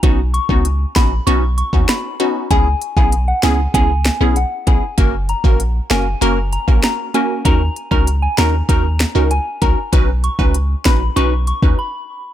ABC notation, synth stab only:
X:1
M:4/4
L:1/16
Q:1/4=97
K:B
V:1 name="Synth stab"
[B,CDF] z2 [B,CDF] z2 [B,CDF] z [B,CDF] z2 [B,CDF]3 [B,CDF]2 | [B,CEG] z2 [B,CEG] z2 [B,CEG] z [B,CEG] z2 [B,CEG] z2 [B,CEG] z | [A,CFA] z2 [A,CFA] z2 [A,CFA] z [A,CFA] z2 [A,CFA]3 [A,CFA]2 | [CDFA] z2 [CDFA] z2 [CDFA] z [CDFA] z2 [CDFA] z2 [CDFA] z |
[CDFB] z2 [CDFB] z2 [CDFB] z [CDFB] z2 [CDFB] z4 |]